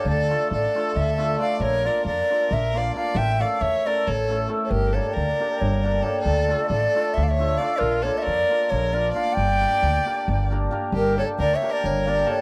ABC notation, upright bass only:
X:1
M:7/8
L:1/8
Q:1/4=135
K:none
V:1 name="Upright bass" clef=bass
D,,2 A,,, z D,,3 | _B,,,2 F,, z B,,,3 | A,,,2 E,, z A,,,3 | G,,,2 D,, z G,,,3 |
D,,2 A,,, z D,,3 | _B,,,2 F,, z B,,,3 | G,,,2 D,, z G,,,3 | G,,,2 D,, z G,,,3 |]